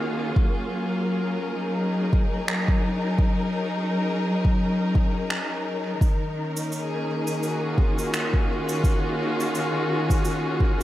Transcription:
Already playing: string section D#3 A#3 C#4 F4 F#4 G#4
0.36 string section F#3, kick
0.83 string section A#4
1.56 string section D#4
2.13 kick
2.48 finger snap
2.68 kick
3.18 kick
4.45 kick
4.95 kick
5.30 finger snap
6.00 string section D#3, kick, cabasa
6.37 string section C#4
6.49 string section A#3
6.57 cabasa
6.72 cabasa
6.80 string section G#4
7.27 cabasa
7.43 string section F#4, cabasa
7.54 string section F4
7.78 kick
7.98 cabasa
8.14 finger snap, cabasa
8.34 kick
8.69 cabasa
8.84 kick, cabasa
9.40 cabasa
9.55 cabasa
10.10 kick, cabasa
10.25 cabasa
10.60 kick

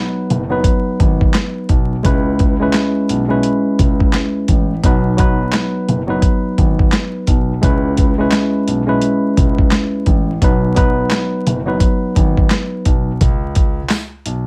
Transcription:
Already playing: tine electric piano F#3 B3 D#4 B4
0.30 grand piano F#1, closed hi-hat
0.49 tine electric piano F#3 B3 D#4 B4
0.64 kick, closed hi-hat
1.00 grand piano G#1, kick, closed hi-hat
1.21 kick
1.34 snare, clap, closed hi-hat
1.69 grand piano B1, kick, closed hi-hat
2.03 grand piano C#2, tine electric piano G#3 C#4 E4 B4, kick, closed hi-hat
2.39 kick, closed hi-hat
2.60 tine electric piano G#3 C#4 E4 B4
2.73 snare, clap, closed hi-hat
3.09 grand piano B1, closed hi-hat
3.28 tine electric piano G#3 C#4 E4 B4
3.43 closed hi-hat
3.79 grand piano C#2, kick, closed hi-hat
4.00 kick
4.13 snare, clap, closed hi-hat
4.48 grand piano A1, kick, closed hi-hat
4.83 grand piano B1, tine electric piano F#3 B3 D#4 B4, kick, closed hi-hat
5.17 tine electric piano F#3 B3 D#4 B4, kick, closed hi-hat
5.53 snare, clap, closed hi-hat
5.88 grand piano F#1, closed hi-hat
6.07 tine electric piano F#3 B3 D#4 B4
6.22 kick, closed hi-hat
6.58 grand piano G#1, kick, closed hi-hat
6.79 kick
6.92 snare, clap, closed hi-hat
7.27 grand piano B1, kick, closed hi-hat
7.61 grand piano C#2, tine electric piano G#3 C#4 E4 B4, kick, closed hi-hat
7.97 kick, closed hi-hat
8.18 tine electric piano G#3 C#4 E4 B4
8.32 snare, clap, closed hi-hat
8.68 grand piano B1, closed hi-hat
8.86 tine electric piano G#3 C#4 E4 B4
9.01 closed hi-hat
9.37 grand piano C#2, kick, closed hi-hat
9.58 kick
9.71 snare, clap, closed hi-hat
10.06 grand piano A1, kick, closed hi-hat
10.42 grand piano B1, tine electric piano F#3 B3 D#4 B4, kick, closed hi-hat
10.75 tine electric piano F#3 B3 D#4 B4, kick, closed hi-hat
11.11 snare, clap, closed hi-hat
11.47 grand piano F#1, closed hi-hat
11.66 tine electric piano F#3 B3 D#4 B4
11.80 kick, closed hi-hat
12.16 grand piano G#1, kick, closed hi-hat
12.37 kick
12.50 snare, clap, closed hi-hat
12.85 grand piano B1, kick, closed hi-hat
13.21 grand piano C#2, kick, closed hi-hat
13.55 kick, closed hi-hat
13.90 snare, clap, closed hi-hat, tambourine
14.26 grand piano B1, closed hi-hat

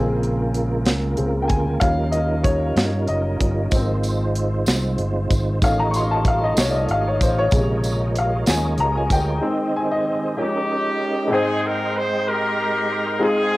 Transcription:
Already playing: fingered electric bass A#1, upright piano C#3 G#3 C4 G#4, tonewheel organ C#3 G#3 A#3 F4 A#4
0.23 closed hi-hat
0.55 closed hi-hat
0.86 fingered electric bass C#2, snare, closed hi-hat
1.17 fingered electric bass C#2, upright piano C#3 G#3 C4, closed hi-hat
1.42 upright piano G5
1.48 fingered electric bass D2, upright piano G#5, kick, closed hi-hat
1.80 fingered electric bass D#2, upright piano F3 G3 C#4 F5, tonewheel organ G3 C#4 D#4 F4, kick, closed hi-hat
2.12 upright piano D#5, closed hi-hat
2.44 upright piano C#5, kick, closed hi-hat
2.76 fingered electric bass G2, snare, closed hi-hat
3.07 fingered electric bass F#1, upright piano D#5, closed hi-hat
3.40 fingered electric bass G1, upright piano F3 G3 C#4, kick, closed hi-hat
3.71 fingered electric bass G#1, upright piano F3 A#3 C4, tonewheel organ G#3 C4 C5, kick, closed hi-hat, tambourine
4.03 closed hi-hat, tambourine
4.35 closed hi-hat
4.66 fingered electric bass C2, snare, closed hi-hat, tambourine
4.98 fingered electric bass G1, closed hi-hat
5.30 fingered electric bass G#1, kick, closed hi-hat, tambourine
5.61 fingered electric bass A1, upright piano D#3 A3 C#4 F5, tonewheel organ A3 F4 C#5 D#5, kick, closed hi-hat, tambourine
5.79 upright piano A#5
5.91 upright piano C#6, closed hi-hat, tambourine
5.96 upright piano C6
6.11 upright piano A5
6.25 upright piano F5, kick, closed hi-hat
6.44 upright piano D#5
6.57 fingered electric bass C2, upright piano C#5, snare, closed hi-hat, tambourine
6.69 upright piano D5
6.75 upright piano D#5
6.88 fingered electric bass G#1, upright piano F5, closed hi-hat
7.07 upright piano C#5
7.21 fingered electric bass A1, upright piano C5, kick, closed hi-hat, tambourine
7.38 upright piano C#5
7.51 fingered electric bass A#1, upright piano C3 C#3 G#3, tonewheel organ G#3 A#4, kick, closed hi-hat, tambourine
7.84 closed hi-hat, tambourine
8.16 upright piano F5, closed hi-hat
8.46 fingered electric bass D#2, upright piano F3 G#3 C#4 G#5, tonewheel organ G#3 D#5, snare, closed hi-hat, tambourine
8.78 fingered electric bass C#2, upright piano A#5, closed hi-hat
8.97 upright piano G#5
9.10 fingered electric bass D2, upright piano G5, kick, closed hi-hat, tambourine
9.41 upright piano D#3 G#3 C4, tonewheel organ D#3 C4 D#4 C5
9.76 upright piano G#5
9.92 upright piano D#5
10.37 upright piano F3 G#3 C#4, horn section A#3 C#4 G4, tonewheel organ C#4 D#4 A#4
11.28 upright piano G#2 G#3 C4 D#4, tonewheel organ G#3
11.32 horn section C4 D#4 G#4, upright piano C5 G5, tonewheel organ D#5 G5 C6
11.65 horn section A#4
11.97 horn section C5
12.27 horn section D#4 G4 A#4
13.19 upright piano G#3 C4 D#4 F4 G#4, tonewheel organ F5
13.23 horn section C4 D#4 G#4

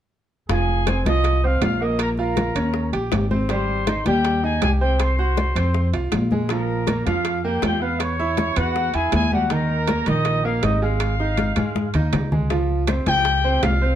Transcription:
0.49 upright bass F1, grand piano F3 F4, trumpet section G#4 G#5, high bongo, high conga, high timbale
0.69 high conga
0.87 grand piano C4 C5, high bongo, high conga, high timbale, low timbale
1.05 upright bass C2, grand piano F3 F4, trumpet section D#5 D#6, high conga, high timbale
1.24 high bongo, high conga, high timbale
1.44 grand piano C4 C5, trumpet section F5, high conga
1.61 upright bass A#1, grand piano F4 F5, trumpet section F5, high bongo, low bongo, high conga, high timbale, low timbale
1.81 grand piano A#3 A#4, trumpet section D#5 D#6, high conga
1.99 trumpet section A#4 A#5, high bongo, high conga, high timbale
2.17 grand piano F4 F5, trumpet section A#4 A#5, high bongo, high conga
2.37 high bongo, high conga, high timbale, low timbale
2.55 upright bass D#2, grand piano C#4 C#5, high bongo, high conga, high timbale
2.74 high bongo, high conga
2.93 upright bass A#1, grand piano G4 G5, high conga, high timbale
3.12 upright bass G#1, high bongo, low bongo, high conga, high timbale, low timbale
3.31 grand piano C4 C5, high bongo, high conga
3.49 grand piano G3 G4, trumpet section C5 C6, high bongo, high conga, high timbale
3.68 high conga
3.87 grand piano D#4 D#5, high bongo, high conga, high timbale, low timbale
4.06 upright bass D#2, grand piano G3 G4, trumpet section G4 G5, high conga, high timbale
4.25 high bongo, high conga, high timbale
4.43 grand piano D#4 D#5, trumpet section G#4 G#5, high conga
4.62 upright bass C2, grand piano G4 G5, trumpet section G#4 G#5, high bongo, low bongo, high conga, high timbale, low timbale
4.81 grand piano C4 C5, trumpet section G4 G5, high conga
5.00 trumpet section C5 C6, high bongo, high conga, high timbale
5.19 grand piano F#4 F#5, trumpet section C5 C6, high bongo, high conga
5.37 high bongo, high conga, high timbale, low timbale
5.56 upright bass F2, grand piano C4 C5, high bongo, high conga, high timbale
5.75 high bongo, high conga
5.93 upright bass C2, grand piano F4 F5, high conga, high timbale
6.12 upright bass A#1, high bongo, low bongo, high conga, high timbale, low timbale
6.31 grand piano G#3 G#4, high bongo, high conga
6.49 grand piano F3 F4, trumpet section A#4 A#5, high bongo, high conga, high timbale
6.70 high conga
6.87 grand piano A#3 A#4, high bongo, high conga, high timbale, low timbale
7.06 upright bass F2, grand piano F3 F4, trumpet section F5, high conga, high timbale
7.25 high bongo, high conga, high timbale
7.44 grand piano A#3 A#4, trumpet section G4 G5, high conga
7.62 upright bass E2, grand piano F4 F5, trumpet section G4 G5, high bongo, low bongo, high conga, high timbale, low timbale
7.81 grand piano B3 B4, trumpet section F5, high conga
8.00 trumpet section C#5 C#6, high bongo, high conga, high timbale
8.19 grand piano E4 E5, high bongo, high conga
8.37 high bongo, high conga, high timbale, low timbale
8.56 upright bass E2, grand piano B3 B4, trumpet section F#4 F#5, high bongo, high conga, high timbale
8.76 high bongo, high conga
8.94 upright bass E2, grand piano E4 E5, trumpet section G#4 G#5, high conga, high timbale
9.12 upright bass D#2, trumpet section G#4 G#5, high bongo, low bongo, high conga, high timbale, low timbale
9.32 grand piano G3 G4, trumpet section F#4 F#5, high bongo, high conga
9.50 grand piano D#3 D#4, trumpet section A#4 A#5, high bongo, high conga, high timbale
9.70 high conga
9.87 grand piano A#3 A#4, high bongo, high conga, high timbale, low timbale
10.06 upright bass A#1, grand piano D#3 D#4, trumpet section D#5 D#6, high conga, high timbale
10.25 high bongo, high conga, high timbale
10.43 grand piano A#3 A#4, trumpet section F5, high conga
10.62 upright bass G#1, grand piano D#4 D#5, trumpet section D#5 D#6, high bongo, low bongo, high conga, high timbale, low timbale
10.81 grand piano G#3 G#4, trumpet section F5, high conga
11.00 high bongo, high conga, high timbale
11.19 grand piano D#4 D#5, high bongo, high conga
11.37 high bongo, high conga, high timbale, low timbale
11.56 upright bass G#2, grand piano G#3 G#4, high bongo, high conga, high timbale
11.75 high bongo, high conga
11.94 upright bass D#2, grand piano D#4 D#5, low conga, high timbale
12.13 upright bass C#2, high bongo, low bongo, low conga, high timbale, low timbale
12.32 grand piano G#3 G#4, high bongo, low conga
12.50 grand piano F3 F4, high bongo, high conga, high timbale
12.70 high conga
12.87 grand piano C4 C5, high bongo, high conga, high timbale, low timbale, claves
13.06 upright bass C#2, grand piano F3 F4, trumpet section G4 G5, high conga, high timbale
13.25 high bongo, high conga, high timbale
13.44 grand piano C4 C5, high conga
13.63 upright bass C2, grand piano F4 F5, trumpet section F5, high bongo, low bongo, high conga, high timbale, low timbale, claves
13.81 grand piano C4 C5, high conga

